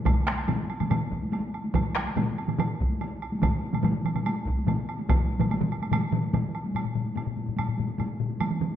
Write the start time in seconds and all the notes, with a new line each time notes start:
0.06 taiko, taiko low-mid, taiko mid, taiko high, high woodblock
0.27 taiko rim, taiko high
0.38 high woodblock
0.48 taiko low-mid, taiko mid, taiko high, high woodblock
0.70 high woodblock
0.80 taiko low-mid, taiko mid, taiko high, high woodblock
0.90 taiko low-mid, taiko mid, taiko high, high woodblock
1.12 taiko
1.22 taiko high
1.32 taiko high, high woodblock
1.54 high woodblock
1.64 taiko high
1.74 taiko, taiko low-mid, taiko mid, taiko high, high woodblock
1.95 taiko rim, taiko high
2.06 taiko high, high woodblock
2.16 taiko low-mid, taiko mid, taiko high, high woodblock
2.38 high woodblock
2.48 taiko low-mid, taiko mid, taiko high, high woodblock
2.58 taiko low-mid, taiko mid, taiko high, high woodblock
2.80 taiko
2.91 taiko high
3.01 taiko high, high woodblock
3.22 high woodblock
3.32 taiko high
3.42 taiko, taiko low-mid, taiko mid, taiko high, high woodblock
3.63 taiko high
3.73 taiko low-mid, taiko mid, taiko high, high woodblock
3.83 taiko low-mid, taiko mid, taiko high, high woodblock
4.05 taiko low-mid, taiko mid, high woodblock
4.15 taiko low-mid, taiko mid, taiko high, high woodblock
4.26 taiko high, high woodblock
4.47 taiko
4.57 taiko high
4.67 taiko low-mid, taiko mid, taiko high, high woodblock
4.89 high woodblock
4.99 taiko high
5.09 taiko, taiko low-mid, taiko mid, taiko high, high woodblock
5.30 taiko high
5.40 taiko low-mid, taiko mid, taiko high, high woodblock
5.51 taiko high, high woodblock
5.60 taiko low-mid, taiko mid
5.72 high woodblock
5.82 taiko high, high woodblock
5.91 taiko low-mid, taiko mid, taiko high, high woodblock
6.13 taiko low-mid, taiko mid
6.23 taiko high
6.33 taiko low-mid, taiko mid, taiko high, high woodblock
6.55 high woodblock
6.64 taiko high
6.75 taiko low-mid, taiko high, high woodblock
6.85 taiko low-mid
6.95 taiko low-mid, taiko high
7.05 taiko high
7.15 taiko low-mid, taiko high, high woodblock
7.26 taiko low-mid
7.36 taiko low-mid, taiko high
7.46 taiko low-mid, taiko high
7.57 taiko low-mid, taiko high, high woodblock
7.68 taiko low-mid
7.77 taiko low-mid, taiko high
7.87 taiko high
7.98 taiko low-mid, taiko high, high woodblock
8.20 taiko low-mid
8.30 taiko high
8.40 taiko mid, taiko high, high woodblock
8.51 taiko mid
8.60 taiko mid, taiko high
8.71 taiko high